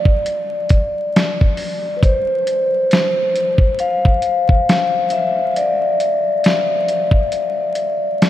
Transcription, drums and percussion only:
0.05 kick medium
0.26 closed hi-hat medium
0.69 kick medium
0.69 closed hi-hat medium
1.16 snare loud
1.16 closed hi-hat medium
1.41 kick medium
1.57 open hi-hat medium
2.03 kick loud
2.03 closed hi-hat medium
2.47 closed hi-hat medium
2.91 snare loud
2.91 closed hi-hat medium
3.35 closed hi-hat medium
3.58 kick medium
3.79 closed hi-hat medium
4.05 kick medium
4.22 closed hi-hat medium
4.49 kick medium
4.69 snare loud
4.69 closed hi-hat medium
5.10 closed hi-hat medium
5.56 closed hi-hat medium
6.00 closed hi-hat medium
6.44 snare loud
6.44 closed hi-hat medium
6.88 closed hi-hat medium
7.11 kick medium
7.32 closed hi-hat medium
7.75 closed hi-hat medium
8.22 snare loud
8.22 closed hi-hat medium

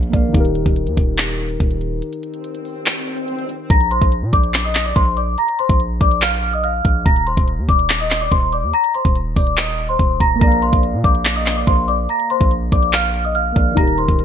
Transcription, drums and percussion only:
0.03 closed hi-hat medium
0.13 kick medium
0.13 closed hi-hat medium
0.34 kick loud
0.34 closed hi-hat medium
0.45 closed hi-hat medium
0.55 closed hi-hat medium
0.66 kick medium
0.66 closed hi-hat medium
0.76 closed hi-hat medium
0.87 closed hi-hat medium
0.97 kick medium
1.18 clap loud
1.18 closed hi-hat medium
1.29 closed hi-hat medium
1.39 closed hi-hat medium
1.50 closed hi-hat soft
1.60 kick loud
1.60 closed hi-hat medium
1.71 closed hi-hat medium
1.81 closed hi-hat medium
2.02 closed hi-hat medium
2.13 closed hi-hat medium
2.23 closed hi-hat medium
2.34 closed hi-hat medium
2.44 closed hi-hat medium
2.55 closed hi-hat medium
2.65 open hi-hat medium
2.86 clap loud
2.86 closed hi-hat medium
2.97 closed hi-hat medium
3.07 closed hi-hat medium
3.18 closed hi-hat medium
3.28 closed hi-hat medium
3.39 closed hi-hat medium
3.49 closed hi-hat medium
3.70 kick loud
3.70 closed hi-hat medium
3.81 closed hi-hat medium
3.91 closed hi-hat medium
4.02 kick medium
4.02 closed hi-hat medium
4.12 closed hi-hat medium
4.33 kick medium
4.33 closed hi-hat medium
4.44 closed hi-hat medium
4.54 clap loud
4.54 closed hi-hat medium
4.65 closed hi-hat medium
4.75 clap loud
4.75 closed hi-hat medium
4.86 closed hi-hat medium
4.96 kick loud
4.96 closed hi-hat medium
5.17 closed hi-hat medium
5.38 closed hi-hat medium
5.48 closed hi-hat medium
5.59 closed hi-hat medium
5.69 kick medium
5.69 closed hi-hat medium
5.80 closed hi-hat medium
6.01 kick medium
6.01 closed hi-hat medium
6.11 closed hi-hat medium
6.22 clap loud
6.22 closed hi-hat medium
6.32 closed hi-hat medium
6.43 closed hi-hat medium
6.53 closed hi-hat medium
6.64 closed hi-hat medium
6.85 kick medium
6.85 closed hi-hat medium
7.06 kick loud
7.06 closed hi-hat medium
7.16 closed hi-hat medium
7.27 closed hi-hat medium
7.37 kick medium
7.37 closed hi-hat medium
7.48 closed hi-hat medium
7.69 kick medium
7.69 closed hi-hat medium
7.79 closed hi-hat medium
7.90 clap loud
7.90 closed hi-hat medium
8.00 closed hi-hat medium
8.11 clap loud
8.11 closed hi-hat medium
8.21 closed hi-hat soft
8.32 kick loud
8.32 closed hi-hat medium
8.53 closed hi-hat medium
8.74 closed hi-hat medium
8.84 closed hi-hat medium
8.95 closed hi-hat medium
9.05 kick loud
9.05 closed hi-hat medium
9.16 closed hi-hat medium
9.36 kick medium
9.36 closed hi-hat soft
9.36 open hi-hat medium
9.47 closed hi-hat medium
9.57 clap loud
9.57 closed hi-hat medium
9.68 closed hi-hat medium
9.78 closed hi-hat medium
9.89 closed hi-hat soft
9.99 kick loud
9.99 closed hi-hat medium
10.20 kick medium
10.20 closed hi-hat medium
10.41 kick loud
10.41 closed hi-hat medium
10.52 closed hi-hat medium
10.62 closed hi-hat medium
10.73 kick medium
10.73 closed hi-hat medium
10.83 closed hi-hat medium
11.04 kick medium
11.04 closed hi-hat medium
11.15 closed hi-hat medium
11.25 clap loud
11.25 closed hi-hat medium
11.36 closed hi-hat medium
11.46 clap loud
11.46 closed hi-hat medium
11.57 closed hi-hat soft
11.67 kick loud
11.67 closed hi-hat medium
11.88 closed hi-hat medium
12.09 closed hi-hat medium
12.20 closed hi-hat medium
12.30 closed hi-hat medium
12.41 kick loud
12.41 closed hi-hat medium
12.51 closed hi-hat medium
12.72 kick medium
12.72 closed hi-hat medium
12.83 closed hi-hat medium
12.93 clap loud
12.93 closed hi-hat medium
13.04 closed hi-hat medium
13.14 closed hi-hat medium
13.25 closed hi-hat medium
13.35 closed hi-hat medium
13.56 kick medium
13.56 closed hi-hat medium
13.77 kick loud
13.77 closed hi-hat medium
13.87 closed hi-hat medium
13.98 closed hi-hat medium
14.08 kick medium
14.08 closed hi-hat medium
14.19 closed hi-hat medium

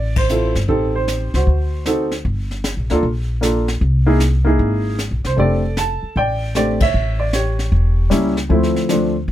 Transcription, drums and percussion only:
0.16 kick medium
0.16 ride medium
0.29 hi-hat pedal soft
0.55 snare soft
0.68 brush sweep soft
0.68 kick soft
1.08 snare soft
1.08 hi-hat pedal soft
1.34 snare soft
1.47 brush sweep soft
1.47 kick soft
1.85 snare soft
1.85 hi-hat pedal soft
2.11 snare soft
2.25 brush sweep soft
2.25 kick soft
2.51 snare soft
2.64 snare soft
2.64 hi-hat pedal medium
2.90 snare soft
3.03 brush sweep soft
3.03 kick soft
3.42 snare soft
3.42 hi-hat pedal soft
3.68 snare soft
3.81 brush sweep soft
3.81 kick soft
4.20 snare medium
4.20 hi-hat pedal medium
4.59 brush sweep soft
4.59 kick soft
4.98 snare soft
4.98 hi-hat pedal soft
5.25 snare soft
5.38 brush sweep soft
5.38 kick soft
5.77 snare soft
5.77 hi-hat pedal medium
6.16 brush sweep soft
6.16 kick soft
6.55 snare soft
6.55 hi-hat pedal soft
6.80 kick medium
6.80 ride medium
6.94 brush sweep soft
7.33 snare soft
7.33 hi-hat pedal soft
7.59 snare soft
7.72 brush sweep soft
7.72 kick soft
8.11 snare soft
8.11 hi-hat pedal soft
8.37 snare soft
8.50 brush sweep soft
8.50 kick soft
8.63 snare soft
8.76 snare soft
8.89 snare soft
8.89 hi-hat pedal soft
9.28 brush sweep soft
9.28 kick soft

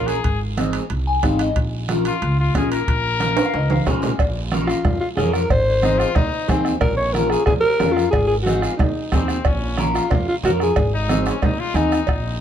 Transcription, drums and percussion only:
0.08 high timbale medium
0.08 short guiro medium
0.24 bombo low medium
0.24 high timbale medium
0.24 long guiro medium
0.57 bombo rim medium
0.57 high conga medium
0.57 high timbale medium
0.57 short guiro medium
0.73 high timbale medium
0.73 short guiro medium
0.90 high timbale medium
0.90 long guiro medium
1.23 bombo low medium
1.23 bombo rim medium
1.23 high conga medium
1.23 high timbale medium
1.23 low timbale medium
1.23 short guiro medium
1.39 high timbale medium
1.39 short guiro medium
1.56 bombo low medium
1.56 high timbale medium
1.56 long guiro medium
1.89 bombo rim medium
1.89 high conga medium
1.89 high timbale medium
1.89 short guiro medium
2.05 high timbale medium
2.05 short guiro medium
2.22 high timbale medium
2.22 long guiro medium
2.54 bombo low medium
2.54 bombo rim medium
2.54 high conga medium
2.54 high timbale medium
2.54 low timbale medium
2.54 short guiro medium
2.72 high timbale medium
2.72 short guiro medium
2.88 bombo low medium
2.88 high timbale medium
2.88 long guiro medium
3.20 bombo rim medium
3.20 high conga medium
3.20 high timbale medium
3.20 short guiro medium
3.37 high timbale medium
3.37 short guiro medium
3.53 high timbale medium
3.53 long guiro medium
3.70 high conga loud
3.70 high timbale medium
3.86 bombo low medium
3.86 bombo rim medium
3.86 low conga medium
3.86 low timbale medium
3.86 short guiro medium
4.02 low conga medium
4.02 low timbale medium
4.02 short guiro medium
4.19 bombo low medium
4.19 bombo rim medium
4.19 cowbell loud
4.19 high conga soft
4.19 long guiro medium
4.52 bombo rim medium
4.52 high conga medium
4.52 short guiro medium
4.67 bombo rim medium
4.67 short guiro medium
4.85 bombo low medium
4.85 bombo rim medium
4.85 cowbell medium
4.85 high conga soft
4.85 low conga medium
4.85 long guiro medium
5.17 bombo rim medium
5.17 high conga medium
5.17 low conga medium
5.17 short guiro medium
5.33 bombo rim medium
5.33 short guiro medium
5.49 bombo low loud
5.49 bombo rim medium
5.49 cowbell loud
5.49 high conga soft
5.49 long guiro medium
5.83 bombo rim medium
5.83 high conga medium
5.83 short guiro medium
6.00 bombo rim medium
6.00 short guiro medium
6.15 bombo low medium
6.15 bombo rim medium
6.15 cowbell medium
6.15 high conga soft
6.15 low conga medium
6.15 long guiro medium
6.48 bombo low medium
6.48 bombo rim medium
6.48 high conga medium
6.48 low conga medium
6.48 low timbale medium
6.48 short guiro medium
6.65 bombo rim medium
6.65 short guiro medium
6.81 bombo low loud
6.81 bombo rim medium
6.81 cowbell loud
6.81 high conga soft
6.81 low conga medium
6.81 long guiro medium
7.14 bombo rim medium
7.14 high conga medium
7.14 short guiro medium
7.30 bombo rim medium
7.30 short guiro medium
7.46 bombo low medium
7.46 bombo rim medium
7.46 cowbell medium
7.46 high conga soft
7.46 low conga medium
7.46 long guiro medium
7.80 bombo rim medium
7.80 high conga medium
7.80 low timbale medium
7.80 short guiro medium
7.97 bombo rim medium
7.97 short guiro medium
8.13 bombo low medium
8.13 bombo rim loud
8.13 cowbell loud
8.13 high conga soft
8.13 low conga medium
8.13 long guiro medium
8.46 bombo rim medium
8.46 high conga medium
8.46 short guiro medium
8.62 bombo rim medium
8.62 short guiro medium
8.79 bombo low medium
8.79 bombo rim medium
8.79 cowbell medium
8.79 high conga soft
8.79 low conga medium
8.79 long guiro medium
9.12 bombo low medium
9.12 bombo rim medium
9.12 high conga medium
9.12 low conga medium
9.12 low timbale medium
9.12 short guiro medium
9.28 bombo rim medium
9.28 short guiro medium
9.45 bombo low medium
9.45 bombo rim medium
9.45 cowbell loud
9.45 high conga soft
9.45 long guiro medium
9.78 bombo rim medium
9.78 high conga medium
9.78 short guiro medium
9.95 bombo rim medium
9.95 short guiro medium
10.10 bombo low medium
10.10 bombo rim medium
10.10 cowbell medium
10.10 high conga soft
10.10 low conga medium
10.10 long guiro medium
10.44 bombo rim medium
10.44 high conga medium
10.44 low conga medium
10.44 short guiro medium
10.60 bombo rim medium
10.60 short guiro medium
10.76 bombo low medium
10.76 bombo rim medium
10.76 cowbell loud
10.76 high conga soft
10.76 low conga medium
10.76 long guiro medium
11.09 bombo rim medium
11.09 high conga medium
11.09 short guiro medium
11.26 bombo rim medium
11.26 short guiro medium
11.42 bombo low medium
11.42 bombo rim medium
11.42 cowbell medium
11.42 high conga soft
11.42 low conga medium
11.42 long guiro medium
11.75 bombo rim medium
11.75 high conga medium
11.75 short guiro medium
11.92 bombo rim medium
11.92 short guiro medium
12.07 bombo low medium
12.07 bombo rim loud
12.07 cowbell loud
12.07 high conga soft
12.07 long guiro medium

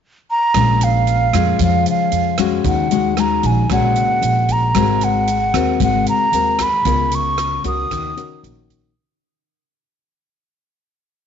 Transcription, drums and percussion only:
0.54 kick medium
0.54 cross-stick medium
0.54 closed hi-hat medium
0.81 closed hi-hat soft
1.07 closed hi-hat soft
1.33 kick soft
1.33 cross-stick medium
1.33 closed hi-hat soft
1.59 kick medium
1.59 closed hi-hat medium
1.86 closed hi-hat soft
2.12 closed hi-hat soft
2.38 kick soft
2.38 cross-stick medium
2.38 closed hi-hat soft
2.64 kick medium
2.64 closed hi-hat medium
2.91 closed hi-hat soft
3.17 cross-stick medium
3.17 closed hi-hat soft
3.43 kick soft
3.43 closed hi-hat soft
3.70 kick medium
3.70 cross-stick medium
3.70 closed hi-hat medium
3.96 closed hi-hat soft
4.23 closed hi-hat soft
4.49 kick soft
4.49 closed hi-hat soft
4.75 kick medium
4.75 cross-stick medium
4.75 closed hi-hat medium
5.01 closed hi-hat soft
5.28 closed hi-hat soft
5.54 kick soft
5.54 cross-stick medium
5.54 closed hi-hat soft
5.80 kick medium
5.80 closed hi-hat medium
6.07 closed hi-hat soft
6.33 closed hi-hat soft
6.59 kick soft
6.59 cross-stick medium
6.59 closed hi-hat soft
6.85 kick medium
6.85 closed hi-hat medium
7.12 closed hi-hat soft
7.38 cross-stick medium
7.38 closed hi-hat soft
7.64 kick soft
7.64 closed hi-hat soft
7.91 kick medium
7.91 cross-stick medium
7.91 closed hi-hat medium
8.17 closed hi-hat soft
8.44 closed hi-hat soft
8.70 kick soft
8.70 closed hi-hat soft

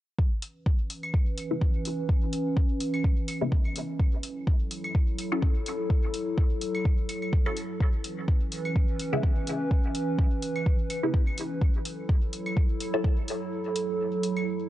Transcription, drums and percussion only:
0.19 kick loud
0.42 open hi-hat medium
0.66 kick loud
0.90 open hi-hat medium
1.03 claves medium
1.14 kick loud
1.38 open hi-hat medium
1.61 kick loud
1.85 open hi-hat medium
2.09 kick loud
2.33 open hi-hat medium
2.57 kick loud
2.80 open hi-hat medium
2.94 claves medium
3.04 kick loud
3.28 open hi-hat medium
3.28 claves medium
3.52 kick loud
3.65 claves medium
3.76 open hi-hat medium
4.00 kick loud
4.23 open hi-hat medium
4.47 kick loud
4.71 open hi-hat medium
4.84 claves medium
4.95 kick loud
5.18 open hi-hat medium
5.42 kick loud
5.66 open hi-hat medium
5.90 kick loud
6.14 open hi-hat medium
6.38 kick loud
6.61 open hi-hat medium
6.75 claves medium
6.85 kick loud
7.09 open hi-hat medium
7.09 claves medium
7.22 claves medium
7.33 kick loud
7.46 claves medium
7.57 open hi-hat medium
7.80 kick loud
8.04 open hi-hat medium
8.28 kick loud
8.52 open hi-hat medium
8.65 claves medium
8.76 kick loud
9.00 open hi-hat medium
9.23 kick loud
9.47 open hi-hat medium
9.71 kick loud
9.95 open hi-hat medium
10.19 kick loud
10.42 open hi-hat medium
10.56 claves medium
10.66 kick loud
10.90 open hi-hat medium
10.90 claves medium
11.14 kick loud
11.27 claves medium
11.38 open hi-hat medium
11.61 kick loud
11.85 open hi-hat medium
12.09 kick loud
12.33 open hi-hat medium
12.46 claves medium
12.57 kick loud
12.80 open hi-hat medium
13.04 kick loud
13.28 open hi-hat medium
13.76 open hi-hat medium
14.23 open hi-hat medium
14.37 claves medium

